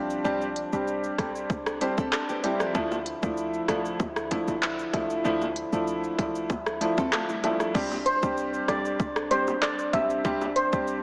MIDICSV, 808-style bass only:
0, 0, Header, 1, 2, 480
1, 0, Start_track
1, 0, Key_signature, 0, "major"
1, 0, Tempo, 625000
1, 191, Time_signature, 4, 2, 24, 8
1, 8470, End_track
2, 0, Start_track
2, 0, Title_t, "808-style bass"
2, 0, Program_c, 0, 38
2, 0, Note_on_c, 0, 35, 87
2, 145, Note_off_c, 0, 35, 0
2, 192, Note_on_c, 0, 36, 102
2, 490, Note_off_c, 0, 36, 0
2, 560, Note_on_c, 0, 36, 93
2, 846, Note_off_c, 0, 36, 0
2, 911, Note_on_c, 0, 35, 98
2, 1106, Note_off_c, 0, 35, 0
2, 1151, Note_on_c, 0, 36, 104
2, 1449, Note_off_c, 0, 36, 0
2, 1520, Note_on_c, 0, 36, 92
2, 1611, Note_off_c, 0, 36, 0
2, 2112, Note_on_c, 0, 38, 105
2, 2410, Note_off_c, 0, 38, 0
2, 2481, Note_on_c, 0, 38, 105
2, 2766, Note_off_c, 0, 38, 0
2, 2832, Note_on_c, 0, 36, 85
2, 3027, Note_off_c, 0, 36, 0
2, 3071, Note_on_c, 0, 38, 112
2, 3369, Note_off_c, 0, 38, 0
2, 3439, Note_on_c, 0, 35, 93
2, 3725, Note_off_c, 0, 35, 0
2, 3790, Note_on_c, 0, 36, 87
2, 3986, Note_off_c, 0, 36, 0
2, 4030, Note_on_c, 0, 38, 110
2, 4329, Note_off_c, 0, 38, 0
2, 4398, Note_on_c, 0, 38, 93
2, 4685, Note_off_c, 0, 38, 0
2, 4751, Note_on_c, 0, 36, 94
2, 4991, Note_on_c, 0, 38, 111
2, 5002, Note_off_c, 0, 36, 0
2, 5289, Note_off_c, 0, 38, 0
2, 5360, Note_on_c, 0, 38, 88
2, 5451, Note_off_c, 0, 38, 0
2, 5951, Note_on_c, 0, 36, 103
2, 6250, Note_off_c, 0, 36, 0
2, 6319, Note_on_c, 0, 36, 104
2, 6606, Note_off_c, 0, 36, 0
2, 6671, Note_on_c, 0, 35, 90
2, 6866, Note_off_c, 0, 35, 0
2, 6910, Note_on_c, 0, 36, 111
2, 7278, Note_on_c, 0, 33, 95
2, 7290, Note_off_c, 0, 36, 0
2, 7565, Note_off_c, 0, 33, 0
2, 7629, Note_on_c, 0, 35, 88
2, 7825, Note_off_c, 0, 35, 0
2, 7870, Note_on_c, 0, 36, 107
2, 8169, Note_off_c, 0, 36, 0
2, 8240, Note_on_c, 0, 36, 96
2, 8470, Note_off_c, 0, 36, 0
2, 8470, End_track
0, 0, End_of_file